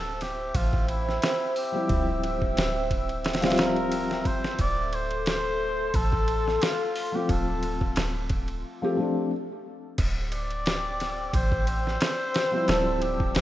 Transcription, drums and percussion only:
0.21 snare soft
0.21 ride medium
0.55 kick loud
0.55 ride medium
0.73 kick medium
0.88 ride medium
1.09 snare soft
1.22 snare loud
1.22 ride medium
1.56 open hi-hat medium
1.89 kick loud
1.89 ride medium
2.24 ride medium
2.42 kick medium
2.57 snare loud
2.57 ride medium
2.91 kick medium
2.91 ride medium
3.09 ride soft
3.24 snare medium
3.24 ride medium
3.33 snare medium
3.33 ride medium
3.42 snare medium
3.42 ride medium
3.50 snare medium
3.50 ride medium
3.58 snare loud
3.58 ride medium
3.76 ride soft
3.92 ride medium
4.11 snare soft
4.25 kick medium
4.25 ride medium
4.44 snare medium
4.59 kick medium
4.59 ride medium
4.93 ride medium
5.11 ride soft
5.26 snare loud
5.26 ride medium
5.94 kick loud
5.94 ride medium
6.12 kick medium
6.28 ride medium
6.48 snare soft
6.62 snare loud
6.62 ride medium
6.96 open hi-hat medium
7.29 kick loud
7.29 ride medium
7.63 ride medium
7.81 kick medium
7.96 snare loud
7.96 ride medium
8.30 kick medium
8.30 ride medium
8.48 ride soft
9.98 kick loud
9.98 crash medium
9.98 ride medium
10.32 ride medium
10.51 ride soft
10.66 snare loud
10.66 ride medium
11.00 snare soft
11.00 ride medium
11.33 kick loud
11.33 ride medium
11.52 kick loud
11.67 ride medium
11.87 snare soft
12.01 snare loud
12.01 ride medium
12.34 snare loud
12.34 ride medium
12.68 snare loud
12.68 ride medium
13.02 ride medium
13.20 kick medium
13.35 snare loud
13.35 ride medium

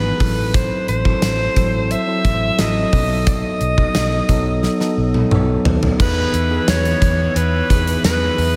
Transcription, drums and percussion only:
0.20 kick medium
0.20 open hi-hat medium
0.54 kick loud
0.54 closed hi-hat loud
0.88 closed hi-hat medium
1.05 kick medium
1.22 snare loud
1.22 closed hi-hat medium
1.56 kick medium
1.56 closed hi-hat medium
1.91 closed hi-hat medium
2.25 kick medium
2.25 closed hi-hat medium
2.59 snare loud
2.59 closed hi-hat medium
2.93 kick medium
2.93 open hi-hat medium
3.27 kick loud
3.27 closed hi-hat loud
3.61 closed hi-hat medium
3.78 kick medium
3.95 snare loud
3.95 closed hi-hat medium
4.29 kick medium
4.29 closed hi-hat medium
4.63 snare medium
4.80 snare medium
5.14 high tom medium
5.31 mid tom medium
5.65 floor tom loud
5.83 floor tom medium
6.00 kick loud
6.00 crash loud
6.34 closed hi-hat medium
6.68 snare loud
6.68 closed hi-hat medium
6.68 tambourine medium
6.85 closed hi-hat soft
7.02 kick medium
7.02 closed hi-hat medium
7.36 closed hi-hat medium
7.70 kick medium
7.70 closed hi-hat medium
7.87 closed hi-hat medium
8.04 snare loud
8.04 closed hi-hat medium
8.04 tambourine medium
8.38 open hi-hat medium

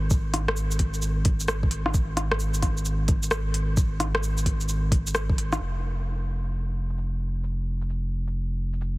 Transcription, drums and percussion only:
0.10 kick loud
0.10 shaker medium
0.34 cross-stick medium
0.34 open hi-hat medium
0.48 cross-stick loud
0.56 shaker soft
0.71 shaker medium
0.79 kick medium
0.79 open hi-hat medium
0.94 shaker soft
1.02 shaker medium
1.25 kick loud
1.25 open hi-hat medium
1.40 shaker medium
1.48 cross-stick loud
1.48 shaker medium
1.63 kick loud
1.71 open hi-hat medium
1.86 cross-stick medium
1.94 kick loud
1.94 shaker medium
2.17 cross-stick medium
2.17 open hi-hat medium
2.32 cross-stick loud
2.40 shaker medium
2.54 shaker medium
2.62 kick medium
2.62 cross-stick soft
2.62 open hi-hat medium
2.77 shaker soft
2.85 shaker medium
3.08 kick loud
3.08 open hi-hat medium
3.23 shaker medium
3.31 cross-stick loud
3.31 shaker medium
3.54 open hi-hat medium
3.77 kick loud
3.77 shaker medium
4.00 cross-stick medium
4.00 open hi-hat medium
4.15 cross-stick loud
4.23 shaker medium
4.38 shaker medium
4.46 kick medium
4.46 open hi-hat medium
4.61 shaker soft
4.69 shaker medium
4.92 kick loud
4.92 open hi-hat medium
5.07 shaker medium
5.15 cross-stick loud
5.15 shaker medium
5.29 kick loud
5.38 open hi-hat medium
5.53 cross-stick medium
5.53 shaker soft
5.61 shaker medium
5.98 shaker soft
6.06 shaker soft
6.44 shaker soft
6.89 shaker soft
6.98 shaker medium
7.43 shaker medium
7.81 shaker medium
7.90 shaker medium
8.27 shaker soft
8.73 shaker soft
8.81 shaker medium

